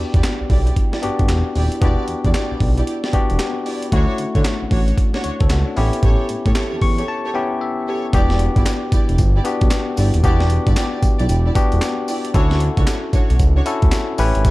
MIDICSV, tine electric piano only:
0, 0, Header, 1, 2, 480
1, 0, Start_track
1, 0, Tempo, 526316
1, 1658, Time_signature, 4, 2, 24, 8
1, 13229, End_track
2, 0, Start_track
2, 0, Title_t, "Tine electric piano"
2, 0, Program_c, 0, 4
2, 0, Control_c, 0, 64, 127
2, 0, Note_on_c, 0, 59, 77
2, 0, Note_on_c, 0, 62, 73
2, 0, Note_on_c, 0, 66, 71
2, 0, Note_on_c, 0, 67, 87
2, 558, Note_off_c, 0, 59, 0
2, 560, Note_off_c, 0, 62, 0
2, 562, Note_off_c, 0, 66, 0
2, 563, Note_off_c, 0, 67, 0
2, 933, Note_on_c, 0, 59, 78
2, 936, Note_on_c, 0, 62, 74
2, 940, Note_on_c, 0, 66, 72
2, 944, Note_on_c, 0, 67, 94
2, 1568, Note_off_c, 0, 59, 0
2, 1569, Note_off_c, 0, 62, 0
2, 1571, Note_off_c, 0, 66, 0
2, 1573, Note_off_c, 0, 67, 0
2, 1654, Note_on_c, 0, 59, 81
2, 1658, Note_on_c, 0, 62, 73
2, 1662, Note_on_c, 0, 66, 76
2, 1666, Note_on_c, 0, 67, 83
2, 2478, Note_off_c, 0, 59, 0
2, 2480, Note_off_c, 0, 62, 0
2, 2482, Note_off_c, 0, 66, 0
2, 2484, Note_off_c, 0, 67, 0
2, 2854, Note_on_c, 0, 59, 77
2, 2857, Note_on_c, 0, 62, 69
2, 2861, Note_on_c, 0, 66, 79
2, 2864, Note_on_c, 0, 67, 89
2, 3488, Note_off_c, 0, 59, 0
2, 3490, Note_off_c, 0, 62, 0
2, 3492, Note_off_c, 0, 66, 0
2, 3493, Note_off_c, 0, 67, 0
2, 3574, Note_on_c, 0, 57, 80
2, 3577, Note_on_c, 0, 61, 71
2, 3581, Note_on_c, 0, 64, 74
2, 3585, Note_on_c, 0, 66, 86
2, 3588, Control_c, 0, 64, 0
2, 3730, Control_c, 0, 64, 127
2, 4398, Note_off_c, 0, 57, 0
2, 4400, Note_off_c, 0, 61, 0
2, 4402, Note_off_c, 0, 64, 0
2, 4404, Note_off_c, 0, 66, 0
2, 4779, Note_on_c, 0, 73, 65
2, 4923, Note_off_c, 0, 73, 0
2, 4932, Note_on_c, 0, 69, 64
2, 5014, Note_off_c, 0, 69, 0
2, 5020, Note_on_c, 0, 66, 67
2, 5163, Note_off_c, 0, 66, 0
2, 5173, Note_on_c, 0, 62, 61
2, 5255, Note_on_c, 0, 59, 88
2, 5259, Note_on_c, 0, 61, 83
2, 5263, Note_on_c, 0, 64, 86
2, 5267, Note_on_c, 0, 67, 101
2, 5268, Control_c, 0, 64, 0
2, 5400, Note_off_c, 0, 62, 0
2, 5445, Control_c, 0, 64, 127
2, 6079, Note_off_c, 0, 59, 0
2, 6080, Note_off_c, 0, 61, 0
2, 6082, Note_off_c, 0, 64, 0
2, 6084, Note_off_c, 0, 67, 0
2, 6220, Note_on_c, 0, 85, 83
2, 6442, Note_off_c, 0, 85, 0
2, 6460, Note_on_c, 0, 81, 81
2, 6682, Note_off_c, 0, 81, 0
2, 6695, Note_on_c, 0, 59, 84
2, 6699, Note_on_c, 0, 61, 78
2, 6700, Note_on_c, 0, 79, 65
2, 6702, Note_on_c, 0, 64, 75
2, 6706, Note_on_c, 0, 67, 92
2, 6922, Note_off_c, 0, 79, 0
2, 6943, Note_on_c, 0, 76, 74
2, 7329, Note_off_c, 0, 59, 0
2, 7331, Note_off_c, 0, 61, 0
2, 7332, Note_off_c, 0, 64, 0
2, 7335, Note_off_c, 0, 67, 0
2, 7387, Note_off_c, 0, 76, 0
2, 7415, Note_on_c, 0, 59, 79
2, 7418, Note_on_c, 0, 62, 74
2, 7423, Note_on_c, 0, 66, 75
2, 7427, Note_on_c, 0, 67, 97
2, 7429, Control_c, 0, 64, 0
2, 7599, Control_c, 0, 64, 127
2, 8239, Note_off_c, 0, 59, 0
2, 8240, Note_off_c, 0, 62, 0
2, 8243, Note_off_c, 0, 66, 0
2, 8244, Note_off_c, 0, 67, 0
2, 8613, Note_on_c, 0, 59, 81
2, 8617, Note_on_c, 0, 62, 77
2, 8620, Note_on_c, 0, 66, 73
2, 8625, Note_on_c, 0, 67, 91
2, 9248, Note_off_c, 0, 59, 0
2, 9250, Note_off_c, 0, 62, 0
2, 9252, Note_off_c, 0, 66, 0
2, 9254, Note_off_c, 0, 67, 0
2, 9334, Note_on_c, 0, 59, 79
2, 9337, Note_on_c, 0, 62, 78
2, 9342, Note_on_c, 0, 66, 81
2, 9345, Note_on_c, 0, 67, 97
2, 10158, Note_off_c, 0, 59, 0
2, 10160, Note_off_c, 0, 62, 0
2, 10162, Note_off_c, 0, 66, 0
2, 10164, Note_off_c, 0, 67, 0
2, 10533, Note_on_c, 0, 59, 86
2, 10536, Note_on_c, 0, 62, 75
2, 10540, Note_on_c, 0, 66, 80
2, 10543, Note_on_c, 0, 67, 92
2, 11168, Note_off_c, 0, 59, 0
2, 11169, Note_off_c, 0, 62, 0
2, 11172, Note_off_c, 0, 66, 0
2, 11173, Note_off_c, 0, 67, 0
2, 11252, Note_on_c, 0, 61, 85
2, 11256, Note_on_c, 0, 64, 81
2, 11260, Note_on_c, 0, 66, 77
2, 11264, Note_on_c, 0, 69, 96
2, 11269, Control_c, 0, 64, 0
2, 11423, Control_c, 0, 64, 127
2, 12077, Note_off_c, 0, 61, 0
2, 12079, Note_off_c, 0, 64, 0
2, 12081, Note_off_c, 0, 66, 0
2, 12083, Note_off_c, 0, 69, 0
2, 12453, Note_on_c, 0, 61, 81
2, 12457, Note_on_c, 0, 64, 81
2, 12461, Note_on_c, 0, 66, 80
2, 12465, Note_on_c, 0, 69, 92
2, 12924, Note_off_c, 0, 61, 0
2, 12927, Note_off_c, 0, 64, 0
2, 12935, Note_on_c, 0, 61, 90
2, 12938, Note_on_c, 0, 64, 86
2, 12939, Note_off_c, 0, 66, 0
2, 12941, Note_off_c, 0, 69, 0
2, 12942, Note_on_c, 0, 67, 87
2, 12945, Note_on_c, 0, 71, 97
2, 12951, Control_c, 0, 64, 0
2, 13126, Control_c, 0, 64, 127
2, 13229, Note_off_c, 0, 61, 0
2, 13229, Note_off_c, 0, 64, 0
2, 13229, Note_off_c, 0, 67, 0
2, 13229, Note_off_c, 0, 71, 0
2, 13229, End_track
0, 0, End_of_file